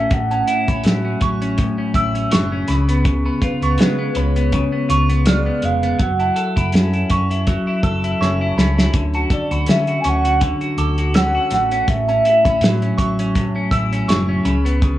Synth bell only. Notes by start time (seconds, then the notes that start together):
0.31 A5
0.68 B5
1.22 C#6
1.95 E6
2.32 C#6
2.68 B5
3.26 B5
3.63 C#6
4.17 B5
4.90 C#6
5.27 F6
6.20 A5
6.58 B5
7.11 C#6
7.84 E6
8.21 C#6
8.58 B5
9.15 A5
9.52 B5
10.05 C#6
10.78 D6
11.15 E6
12.08 A5
12.45 B5
12.98 C#6
13.71 E6
14.08 C#6
14.45 B5